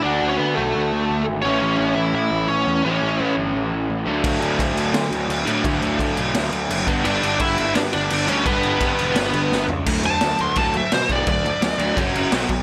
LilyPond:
<<
  \new Staff \with { instrumentName = "Lead electric guitar" } { \time 4/4 \key d \major \tempo 4 = 171 <d' d''>8. <cis' cis''>16 <b b'>8 <a a'>2 r8 | <cis' cis''>4. <e' e''>8 <e' e''>4 <cis' cis''>4 | <cis' cis''>4. r2 r8 | r1 |
r1 | <d' d''>4 <e' e''>4 <d' d''>8 <d' d''>4 <cis' cis''>8 | <b b'>2.~ <b b'>8 r8 | r8 a''4 c'''8 a''8 e''8 c''8 d''8 |
d''2 r2 | }
  \new Staff \with { instrumentName = "Overdriven electric guitar" } { \clef bass \time 4/4 \key d \major <d a d' fis'>1 | <a, e a cis' e'>1 | <a, e a cis' e'>2.~ <a, e a cis' e'>8 <d fis a d'>8~ | <d fis a d'>2.~ <d fis a d'>8 <d fis a d'>8~ |
<d fis a d'>2.~ <d fis a d'>8 <g, d g b d'>8~ | <g, d g b d'>2.~ <g, d g b d'>8 <g, d g b d'>8~ | <g, d g b d'>2.~ <g, d g b d'>8 r8 | <d fis a>8 <d fis>8 <d fis>8 <d fis>8 <d fis a>8 <d fis>8 <d fis>8 <d fis a>8 |
<d fis>8 <d fis>8 <d fis>8 <d fis a>8 <fis cis' fis'>8 <fis cis' fis'>8 <b, fis b>8 <b, fis>8 | }
  \new Staff \with { instrumentName = "Picked electric bass" } { \clef bass \time 4/4 \key d \major d,8 d,8 d8 b,,8 d,8 d,8 d,8 gis,,8 | a,,8 a,,8 a,,8 a,,8 a,8 a,,8 a,,8 e,8 | a,,8 a,,8 a,8 g,,8 a,,8 a,,8 a,,8 d,8 | d,8 d,8 d,8 d,8 d8 d,8 d,8 a,8 |
d,8 d,8 d8 b,,8 d,8 d,8 fis,,8 g,,8 | g,,8 g,,8 g,,8 g,,8 g,8 g,,8 g,,8 d,8 | g,,8 g,,8 g,8 e,,8 g,,8 g,,8 g,,8 cis,8 | d,8 d,8 d,8 d,8 d,4 b,8 b,,8 |
d,4 d,8 d,8 fis,,8 fis,,8 b,,8 b,,8 | }
  \new DrumStaff \with { instrumentName = "Drums" } \drummode { \time 4/4 r4 r4 r4 r4 | r4 r4 r4 r4 | r4 r4 r4 r4 | <cymc bd>8 cymc8 <cymc bd>8 cymc8 <cymc sn>8 cymc8 cymc8 cymc8 |
<cymc bd>8 cymc8 <cymc bd>8 cymc8 <cymc sn>8 cymc8 cymc8 <cymc bd>8 | cymc8 cymc8 <cymc bd>8 cymc8 <cymc sn>8 cymc8 cymc8 cymc8 | <cymc bd>8 cymc8 <cymc bd>8 cymc8 <cymc sn>8 cymc8 sn8 tomfh8 | <cymc bd>8 cymc8 <cymc sn>8 cymc8 <cymc bd>8 cymc8 <cymc sn>8 <cymc bd>8 |
<cymc bd>8 cymc8 <cymc sn>8 cymc8 <cymc bd>8 cymc8 <cymc sn>8 <cymc bd>8 | }
>>